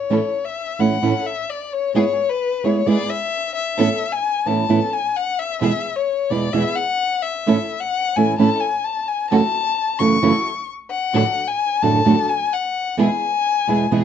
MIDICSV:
0, 0, Header, 1, 4, 480
1, 0, Start_track
1, 0, Key_signature, 3, "major"
1, 0, Tempo, 460476
1, 102, Time_signature, 4, 2, 24, 8
1, 14637, End_track
2, 0, Start_track
2, 0, Title_t, "Violin"
2, 0, Program_c, 0, 40
2, 0, Note_on_c, 0, 73, 70
2, 468, Note_on_c, 0, 76, 80
2, 483, Note_off_c, 0, 73, 0
2, 835, Note_on_c, 0, 78, 73
2, 851, Note_off_c, 0, 76, 0
2, 1316, Note_on_c, 0, 76, 85
2, 1332, Note_off_c, 0, 78, 0
2, 1564, Note_on_c, 0, 74, 73
2, 1580, Note_off_c, 0, 76, 0
2, 1801, Note_on_c, 0, 73, 82
2, 1817, Note_off_c, 0, 74, 0
2, 2029, Note_off_c, 0, 73, 0
2, 2035, Note_on_c, 0, 73, 92
2, 2394, Note_on_c, 0, 71, 91
2, 2409, Note_off_c, 0, 73, 0
2, 2753, Note_on_c, 0, 73, 79
2, 2768, Note_off_c, 0, 71, 0
2, 2988, Note_on_c, 0, 74, 94
2, 3004, Note_off_c, 0, 73, 0
2, 3232, Note_on_c, 0, 76, 108
2, 3248, Note_off_c, 0, 74, 0
2, 3695, Note_off_c, 0, 76, 0
2, 3702, Note_on_c, 0, 76, 97
2, 4297, Note_on_c, 0, 80, 96
2, 4312, Note_off_c, 0, 76, 0
2, 4652, Note_on_c, 0, 81, 92
2, 4667, Note_off_c, 0, 80, 0
2, 5139, Note_on_c, 0, 80, 97
2, 5154, Note_off_c, 0, 81, 0
2, 5380, Note_on_c, 0, 78, 92
2, 5396, Note_off_c, 0, 80, 0
2, 5613, Note_on_c, 0, 76, 97
2, 5629, Note_off_c, 0, 78, 0
2, 5847, Note_off_c, 0, 76, 0
2, 5853, Note_on_c, 0, 76, 93
2, 6213, Note_on_c, 0, 73, 81
2, 6229, Note_off_c, 0, 76, 0
2, 6573, Note_on_c, 0, 74, 86
2, 6588, Note_off_c, 0, 73, 0
2, 6809, Note_on_c, 0, 76, 97
2, 6824, Note_off_c, 0, 74, 0
2, 7043, Note_on_c, 0, 78, 97
2, 7058, Note_off_c, 0, 76, 0
2, 7527, Note_on_c, 0, 76, 81
2, 7543, Note_off_c, 0, 78, 0
2, 8136, Note_on_c, 0, 78, 95
2, 8152, Note_off_c, 0, 76, 0
2, 8508, Note_on_c, 0, 80, 86
2, 8523, Note_off_c, 0, 78, 0
2, 8737, Note_off_c, 0, 80, 0
2, 8743, Note_on_c, 0, 81, 99
2, 8970, Note_on_c, 0, 80, 93
2, 8985, Note_off_c, 0, 81, 0
2, 9217, Note_on_c, 0, 81, 88
2, 9232, Note_off_c, 0, 80, 0
2, 9462, Note_on_c, 0, 80, 83
2, 9478, Note_off_c, 0, 81, 0
2, 9691, Note_off_c, 0, 80, 0
2, 9697, Note_on_c, 0, 81, 118
2, 10410, Note_on_c, 0, 85, 98
2, 10425, Note_off_c, 0, 81, 0
2, 11129, Note_off_c, 0, 85, 0
2, 11366, Note_on_c, 0, 78, 99
2, 11964, Note_on_c, 0, 80, 101
2, 11979, Note_off_c, 0, 78, 0
2, 12323, Note_on_c, 0, 81, 104
2, 12338, Note_off_c, 0, 80, 0
2, 12814, Note_on_c, 0, 80, 105
2, 12830, Note_off_c, 0, 81, 0
2, 13062, Note_on_c, 0, 78, 93
2, 13077, Note_off_c, 0, 80, 0
2, 13541, Note_off_c, 0, 78, 0
2, 13550, Note_on_c, 0, 80, 108
2, 14637, Note_off_c, 0, 80, 0
2, 14637, End_track
3, 0, Start_track
3, 0, Title_t, "String section"
3, 0, Program_c, 1, 48
3, 105, Note_on_c, 1, 61, 71
3, 105, Note_on_c, 1, 64, 64
3, 109, Note_on_c, 1, 69, 80
3, 306, Note_off_c, 1, 61, 0
3, 307, Note_off_c, 1, 64, 0
3, 308, Note_off_c, 1, 69, 0
3, 828, Note_on_c, 1, 61, 47
3, 830, Note_on_c, 1, 64, 40
3, 834, Note_on_c, 1, 69, 52
3, 1030, Note_off_c, 1, 61, 0
3, 1031, Note_off_c, 1, 64, 0
3, 1033, Note_off_c, 1, 69, 0
3, 1070, Note_on_c, 1, 61, 71
3, 1074, Note_on_c, 1, 64, 66
3, 1076, Note_on_c, 1, 69, 76
3, 1272, Note_off_c, 1, 61, 0
3, 1274, Note_off_c, 1, 64, 0
3, 1275, Note_off_c, 1, 69, 0
3, 2030, Note_on_c, 1, 44, 72
3, 2030, Note_on_c, 1, 59, 71
3, 2032, Note_on_c, 1, 64, 67
3, 2034, Note_on_c, 1, 68, 84
3, 2231, Note_off_c, 1, 59, 0
3, 2232, Note_off_c, 1, 44, 0
3, 2233, Note_off_c, 1, 64, 0
3, 2234, Note_off_c, 1, 68, 0
3, 2748, Note_on_c, 1, 44, 45
3, 2750, Note_on_c, 1, 64, 42
3, 2751, Note_on_c, 1, 59, 46
3, 2752, Note_on_c, 1, 68, 49
3, 2950, Note_off_c, 1, 44, 0
3, 2950, Note_off_c, 1, 64, 0
3, 2951, Note_off_c, 1, 59, 0
3, 2952, Note_off_c, 1, 68, 0
3, 2982, Note_on_c, 1, 44, 67
3, 2983, Note_on_c, 1, 59, 75
3, 2985, Note_on_c, 1, 64, 69
3, 2988, Note_on_c, 1, 68, 89
3, 3186, Note_off_c, 1, 44, 0
3, 3186, Note_off_c, 1, 59, 0
3, 3187, Note_off_c, 1, 64, 0
3, 3188, Note_off_c, 1, 68, 0
3, 3935, Note_on_c, 1, 59, 85
3, 3939, Note_on_c, 1, 61, 74
3, 3941, Note_on_c, 1, 69, 96
3, 4138, Note_off_c, 1, 59, 0
3, 4140, Note_off_c, 1, 61, 0
3, 4141, Note_off_c, 1, 69, 0
3, 4650, Note_on_c, 1, 59, 56
3, 4655, Note_on_c, 1, 61, 51
3, 4656, Note_on_c, 1, 69, 59
3, 4853, Note_off_c, 1, 59, 0
3, 4855, Note_off_c, 1, 61, 0
3, 4856, Note_off_c, 1, 69, 0
3, 4889, Note_on_c, 1, 59, 81
3, 4890, Note_on_c, 1, 61, 75
3, 4892, Note_on_c, 1, 69, 90
3, 5093, Note_off_c, 1, 59, 0
3, 5093, Note_off_c, 1, 61, 0
3, 5095, Note_off_c, 1, 69, 0
3, 5855, Note_on_c, 1, 59, 74
3, 5857, Note_on_c, 1, 64, 64
3, 5857, Note_on_c, 1, 68, 89
3, 6055, Note_off_c, 1, 59, 0
3, 6056, Note_off_c, 1, 64, 0
3, 6056, Note_off_c, 1, 68, 0
3, 6576, Note_on_c, 1, 59, 54
3, 6577, Note_on_c, 1, 64, 43
3, 6579, Note_on_c, 1, 68, 49
3, 6776, Note_off_c, 1, 59, 0
3, 6777, Note_off_c, 1, 64, 0
3, 6777, Note_off_c, 1, 68, 0
3, 6811, Note_on_c, 1, 59, 79
3, 6813, Note_on_c, 1, 64, 60
3, 6815, Note_on_c, 1, 68, 81
3, 7014, Note_off_c, 1, 59, 0
3, 7015, Note_off_c, 1, 64, 0
3, 7016, Note_off_c, 1, 68, 0
3, 7786, Note_on_c, 1, 61, 77
3, 7788, Note_on_c, 1, 64, 68
3, 7790, Note_on_c, 1, 69, 82
3, 7989, Note_off_c, 1, 61, 0
3, 7990, Note_off_c, 1, 64, 0
3, 7991, Note_off_c, 1, 69, 0
3, 8510, Note_on_c, 1, 61, 51
3, 8513, Note_on_c, 1, 64, 44
3, 8513, Note_on_c, 1, 69, 51
3, 8710, Note_off_c, 1, 61, 0
3, 8712, Note_off_c, 1, 64, 0
3, 8712, Note_off_c, 1, 69, 0
3, 8743, Note_on_c, 1, 61, 74
3, 8749, Note_on_c, 1, 64, 73
3, 8749, Note_on_c, 1, 69, 90
3, 8946, Note_off_c, 1, 61, 0
3, 8949, Note_off_c, 1, 64, 0
3, 8949, Note_off_c, 1, 69, 0
3, 9702, Note_on_c, 1, 64, 77
3, 9703, Note_on_c, 1, 66, 80
3, 9708, Note_on_c, 1, 69, 80
3, 9904, Note_off_c, 1, 64, 0
3, 9904, Note_off_c, 1, 66, 0
3, 9907, Note_off_c, 1, 69, 0
3, 10420, Note_on_c, 1, 64, 50
3, 10421, Note_on_c, 1, 66, 46
3, 10425, Note_on_c, 1, 69, 53
3, 10620, Note_off_c, 1, 64, 0
3, 10621, Note_off_c, 1, 66, 0
3, 10622, Note_off_c, 1, 69, 0
3, 10661, Note_on_c, 1, 64, 76
3, 10662, Note_on_c, 1, 66, 73
3, 10663, Note_on_c, 1, 69, 83
3, 10859, Note_off_c, 1, 64, 0
3, 10860, Note_off_c, 1, 66, 0
3, 10860, Note_off_c, 1, 69, 0
3, 11608, Note_on_c, 1, 54, 80
3, 11610, Note_on_c, 1, 62, 74
3, 11611, Note_on_c, 1, 66, 70
3, 11613, Note_on_c, 1, 69, 95
3, 11812, Note_off_c, 1, 54, 0
3, 11813, Note_off_c, 1, 62, 0
3, 11814, Note_off_c, 1, 66, 0
3, 11815, Note_off_c, 1, 69, 0
3, 12327, Note_on_c, 1, 54, 52
3, 12328, Note_on_c, 1, 66, 47
3, 12330, Note_on_c, 1, 62, 53
3, 12330, Note_on_c, 1, 69, 58
3, 12531, Note_off_c, 1, 54, 0
3, 12532, Note_off_c, 1, 66, 0
3, 12533, Note_off_c, 1, 62, 0
3, 12533, Note_off_c, 1, 69, 0
3, 12564, Note_on_c, 1, 54, 81
3, 12567, Note_on_c, 1, 62, 76
3, 12567, Note_on_c, 1, 66, 74
3, 12571, Note_on_c, 1, 69, 87
3, 12771, Note_off_c, 1, 54, 0
3, 12772, Note_off_c, 1, 62, 0
3, 12772, Note_off_c, 1, 66, 0
3, 12774, Note_off_c, 1, 69, 0
3, 13536, Note_on_c, 1, 59, 82
3, 13536, Note_on_c, 1, 64, 73
3, 13536, Note_on_c, 1, 68, 86
3, 13739, Note_off_c, 1, 59, 0
3, 13739, Note_off_c, 1, 64, 0
3, 13739, Note_off_c, 1, 68, 0
3, 14259, Note_on_c, 1, 59, 53
3, 14260, Note_on_c, 1, 64, 44
3, 14265, Note_on_c, 1, 68, 59
3, 14463, Note_off_c, 1, 59, 0
3, 14463, Note_off_c, 1, 64, 0
3, 14466, Note_off_c, 1, 68, 0
3, 14501, Note_on_c, 1, 59, 72
3, 14501, Note_on_c, 1, 64, 60
3, 14504, Note_on_c, 1, 68, 79
3, 14637, Note_off_c, 1, 59, 0
3, 14637, Note_off_c, 1, 64, 0
3, 14637, Note_off_c, 1, 68, 0
3, 14637, End_track
4, 0, Start_track
4, 0, Title_t, "Nylon-string guitar"
4, 0, Program_c, 2, 24
4, 103, Note_on_c, 2, 45, 67
4, 106, Note_on_c, 2, 52, 68
4, 109, Note_on_c, 2, 57, 69
4, 114, Note_on_c, 2, 61, 69
4, 119, Note_on_c, 2, 64, 78
4, 197, Note_off_c, 2, 45, 0
4, 199, Note_off_c, 2, 52, 0
4, 200, Note_off_c, 2, 57, 0
4, 202, Note_off_c, 2, 61, 0
4, 205, Note_off_c, 2, 64, 0
4, 824, Note_on_c, 2, 52, 68
4, 825, Note_on_c, 2, 45, 58
4, 829, Note_on_c, 2, 57, 63
4, 834, Note_on_c, 2, 61, 59
4, 837, Note_on_c, 2, 64, 66
4, 1003, Note_off_c, 2, 52, 0
4, 1004, Note_off_c, 2, 45, 0
4, 1006, Note_off_c, 2, 57, 0
4, 1008, Note_off_c, 2, 61, 0
4, 1010, Note_off_c, 2, 64, 0
4, 1060, Note_on_c, 2, 45, 87
4, 1067, Note_on_c, 2, 52, 72
4, 1073, Note_on_c, 2, 57, 86
4, 1074, Note_on_c, 2, 61, 78
4, 1076, Note_on_c, 2, 64, 90
4, 1158, Note_off_c, 2, 45, 0
4, 1162, Note_off_c, 2, 52, 0
4, 1164, Note_off_c, 2, 57, 0
4, 1165, Note_off_c, 2, 61, 0
4, 1166, Note_off_c, 2, 64, 0
4, 2028, Note_on_c, 2, 56, 73
4, 2036, Note_on_c, 2, 59, 78
4, 2041, Note_on_c, 2, 64, 83
4, 2123, Note_off_c, 2, 56, 0
4, 2127, Note_off_c, 2, 59, 0
4, 2130, Note_off_c, 2, 64, 0
4, 2750, Note_on_c, 2, 56, 70
4, 2759, Note_on_c, 2, 59, 62
4, 2764, Note_on_c, 2, 64, 66
4, 2926, Note_off_c, 2, 56, 0
4, 2930, Note_off_c, 2, 59, 0
4, 2933, Note_off_c, 2, 64, 0
4, 2986, Note_on_c, 2, 56, 84
4, 2994, Note_on_c, 2, 59, 101
4, 2996, Note_on_c, 2, 64, 83
4, 3080, Note_off_c, 2, 56, 0
4, 3084, Note_off_c, 2, 59, 0
4, 3085, Note_off_c, 2, 64, 0
4, 3936, Note_on_c, 2, 45, 70
4, 3943, Note_on_c, 2, 52, 74
4, 3945, Note_on_c, 2, 59, 69
4, 3948, Note_on_c, 2, 61, 80
4, 3953, Note_on_c, 2, 64, 89
4, 4032, Note_off_c, 2, 45, 0
4, 4035, Note_off_c, 2, 52, 0
4, 4036, Note_off_c, 2, 59, 0
4, 4038, Note_off_c, 2, 61, 0
4, 4040, Note_off_c, 2, 64, 0
4, 4646, Note_on_c, 2, 45, 64
4, 4650, Note_on_c, 2, 52, 67
4, 4654, Note_on_c, 2, 59, 74
4, 4661, Note_on_c, 2, 61, 74
4, 4664, Note_on_c, 2, 64, 67
4, 4826, Note_off_c, 2, 45, 0
4, 4828, Note_off_c, 2, 52, 0
4, 4830, Note_off_c, 2, 59, 0
4, 4834, Note_off_c, 2, 61, 0
4, 4835, Note_off_c, 2, 64, 0
4, 4888, Note_on_c, 2, 45, 89
4, 4894, Note_on_c, 2, 52, 90
4, 4898, Note_on_c, 2, 59, 90
4, 4898, Note_on_c, 2, 61, 93
4, 4900, Note_on_c, 2, 64, 99
4, 4984, Note_off_c, 2, 45, 0
4, 4987, Note_off_c, 2, 52, 0
4, 4989, Note_off_c, 2, 59, 0
4, 4989, Note_off_c, 2, 61, 0
4, 4990, Note_off_c, 2, 64, 0
4, 5843, Note_on_c, 2, 40, 74
4, 5848, Note_on_c, 2, 47, 74
4, 5850, Note_on_c, 2, 52, 90
4, 5854, Note_on_c, 2, 56, 89
4, 5859, Note_on_c, 2, 64, 91
4, 5860, Note_on_c, 2, 59, 79
4, 5941, Note_off_c, 2, 40, 0
4, 5944, Note_off_c, 2, 47, 0
4, 5945, Note_off_c, 2, 52, 0
4, 5947, Note_off_c, 2, 56, 0
4, 5950, Note_off_c, 2, 59, 0
4, 5950, Note_off_c, 2, 64, 0
4, 6568, Note_on_c, 2, 40, 65
4, 6574, Note_on_c, 2, 47, 59
4, 6577, Note_on_c, 2, 52, 65
4, 6577, Note_on_c, 2, 56, 62
4, 6581, Note_on_c, 2, 59, 72
4, 6587, Note_on_c, 2, 64, 77
4, 6747, Note_off_c, 2, 40, 0
4, 6750, Note_off_c, 2, 47, 0
4, 6752, Note_off_c, 2, 52, 0
4, 6752, Note_off_c, 2, 56, 0
4, 6754, Note_off_c, 2, 59, 0
4, 6757, Note_off_c, 2, 64, 0
4, 6811, Note_on_c, 2, 40, 89
4, 6813, Note_on_c, 2, 47, 84
4, 6816, Note_on_c, 2, 52, 77
4, 6816, Note_on_c, 2, 56, 79
4, 6819, Note_on_c, 2, 59, 83
4, 6820, Note_on_c, 2, 64, 87
4, 6906, Note_off_c, 2, 40, 0
4, 6907, Note_off_c, 2, 47, 0
4, 6908, Note_off_c, 2, 52, 0
4, 6908, Note_off_c, 2, 56, 0
4, 6910, Note_off_c, 2, 59, 0
4, 6910, Note_off_c, 2, 64, 0
4, 7780, Note_on_c, 2, 45, 76
4, 7786, Note_on_c, 2, 52, 67
4, 7790, Note_on_c, 2, 57, 82
4, 7795, Note_on_c, 2, 61, 71
4, 7796, Note_on_c, 2, 64, 74
4, 7877, Note_off_c, 2, 45, 0
4, 7880, Note_off_c, 2, 52, 0
4, 7882, Note_off_c, 2, 57, 0
4, 7885, Note_off_c, 2, 61, 0
4, 7885, Note_off_c, 2, 64, 0
4, 8507, Note_on_c, 2, 45, 54
4, 8517, Note_on_c, 2, 52, 56
4, 8521, Note_on_c, 2, 57, 71
4, 8521, Note_on_c, 2, 61, 62
4, 8522, Note_on_c, 2, 64, 75
4, 8684, Note_off_c, 2, 45, 0
4, 8689, Note_off_c, 2, 52, 0
4, 8691, Note_off_c, 2, 57, 0
4, 8691, Note_off_c, 2, 61, 0
4, 8692, Note_off_c, 2, 64, 0
4, 8738, Note_on_c, 2, 45, 85
4, 8746, Note_on_c, 2, 52, 87
4, 8748, Note_on_c, 2, 57, 79
4, 8753, Note_on_c, 2, 61, 92
4, 8753, Note_on_c, 2, 64, 94
4, 8836, Note_off_c, 2, 45, 0
4, 8840, Note_off_c, 2, 52, 0
4, 8841, Note_off_c, 2, 57, 0
4, 8843, Note_off_c, 2, 61, 0
4, 8844, Note_off_c, 2, 64, 0
4, 9706, Note_on_c, 2, 42, 74
4, 9709, Note_on_c, 2, 49, 74
4, 9712, Note_on_c, 2, 57, 81
4, 9713, Note_on_c, 2, 52, 71
4, 9718, Note_on_c, 2, 61, 81
4, 9718, Note_on_c, 2, 66, 72
4, 9798, Note_off_c, 2, 42, 0
4, 9800, Note_off_c, 2, 49, 0
4, 9801, Note_off_c, 2, 57, 0
4, 9802, Note_off_c, 2, 52, 0
4, 9804, Note_off_c, 2, 61, 0
4, 9804, Note_off_c, 2, 66, 0
4, 10417, Note_on_c, 2, 42, 63
4, 10421, Note_on_c, 2, 49, 60
4, 10425, Note_on_c, 2, 52, 70
4, 10425, Note_on_c, 2, 57, 74
4, 10432, Note_on_c, 2, 61, 70
4, 10433, Note_on_c, 2, 66, 72
4, 10594, Note_off_c, 2, 42, 0
4, 10596, Note_off_c, 2, 49, 0
4, 10598, Note_off_c, 2, 52, 0
4, 10598, Note_off_c, 2, 57, 0
4, 10601, Note_off_c, 2, 61, 0
4, 10602, Note_off_c, 2, 66, 0
4, 10653, Note_on_c, 2, 42, 87
4, 10656, Note_on_c, 2, 49, 86
4, 10659, Note_on_c, 2, 52, 97
4, 10662, Note_on_c, 2, 57, 96
4, 10663, Note_on_c, 2, 61, 106
4, 10665, Note_on_c, 2, 66, 90
4, 10748, Note_off_c, 2, 42, 0
4, 10750, Note_off_c, 2, 49, 0
4, 10751, Note_off_c, 2, 52, 0
4, 10753, Note_off_c, 2, 57, 0
4, 10753, Note_off_c, 2, 61, 0
4, 10754, Note_off_c, 2, 66, 0
4, 11604, Note_on_c, 2, 42, 67
4, 11608, Note_on_c, 2, 45, 88
4, 11612, Note_on_c, 2, 50, 73
4, 11613, Note_on_c, 2, 62, 82
4, 11615, Note_on_c, 2, 57, 75
4, 11619, Note_on_c, 2, 66, 79
4, 11703, Note_off_c, 2, 42, 0
4, 11704, Note_off_c, 2, 45, 0
4, 11706, Note_off_c, 2, 50, 0
4, 11707, Note_off_c, 2, 62, 0
4, 11708, Note_off_c, 2, 57, 0
4, 11710, Note_off_c, 2, 66, 0
4, 12326, Note_on_c, 2, 42, 69
4, 12326, Note_on_c, 2, 45, 79
4, 12334, Note_on_c, 2, 50, 81
4, 12334, Note_on_c, 2, 57, 68
4, 12340, Note_on_c, 2, 62, 80
4, 12341, Note_on_c, 2, 66, 78
4, 12506, Note_off_c, 2, 42, 0
4, 12506, Note_off_c, 2, 45, 0
4, 12510, Note_off_c, 2, 50, 0
4, 12510, Note_off_c, 2, 57, 0
4, 12513, Note_off_c, 2, 62, 0
4, 12513, Note_off_c, 2, 66, 0
4, 12560, Note_on_c, 2, 42, 86
4, 12564, Note_on_c, 2, 45, 89
4, 12565, Note_on_c, 2, 50, 101
4, 12574, Note_on_c, 2, 57, 86
4, 12574, Note_on_c, 2, 62, 91
4, 12574, Note_on_c, 2, 66, 89
4, 12660, Note_off_c, 2, 42, 0
4, 12662, Note_off_c, 2, 45, 0
4, 12663, Note_off_c, 2, 50, 0
4, 12667, Note_off_c, 2, 57, 0
4, 12667, Note_off_c, 2, 62, 0
4, 12667, Note_off_c, 2, 66, 0
4, 13524, Note_on_c, 2, 40, 67
4, 13524, Note_on_c, 2, 47, 78
4, 13529, Note_on_c, 2, 52, 79
4, 13531, Note_on_c, 2, 56, 86
4, 13536, Note_on_c, 2, 59, 84
4, 13539, Note_on_c, 2, 64, 75
4, 13625, Note_off_c, 2, 40, 0
4, 13625, Note_off_c, 2, 47, 0
4, 13627, Note_off_c, 2, 52, 0
4, 13628, Note_off_c, 2, 56, 0
4, 13631, Note_off_c, 2, 59, 0
4, 13632, Note_off_c, 2, 64, 0
4, 14253, Note_on_c, 2, 40, 64
4, 14259, Note_on_c, 2, 47, 64
4, 14262, Note_on_c, 2, 52, 56
4, 14264, Note_on_c, 2, 56, 70
4, 14268, Note_on_c, 2, 59, 74
4, 14268, Note_on_c, 2, 64, 72
4, 14435, Note_off_c, 2, 40, 0
4, 14438, Note_off_c, 2, 47, 0
4, 14439, Note_off_c, 2, 52, 0
4, 14440, Note_off_c, 2, 56, 0
4, 14442, Note_off_c, 2, 59, 0
4, 14442, Note_off_c, 2, 64, 0
4, 14501, Note_on_c, 2, 40, 82
4, 14504, Note_on_c, 2, 47, 78
4, 14507, Note_on_c, 2, 52, 83
4, 14508, Note_on_c, 2, 56, 78
4, 14513, Note_on_c, 2, 59, 89
4, 14514, Note_on_c, 2, 64, 91
4, 14596, Note_off_c, 2, 40, 0
4, 14598, Note_off_c, 2, 47, 0
4, 14599, Note_off_c, 2, 52, 0
4, 14600, Note_off_c, 2, 56, 0
4, 14602, Note_off_c, 2, 59, 0
4, 14602, Note_off_c, 2, 64, 0
4, 14637, End_track
0, 0, End_of_file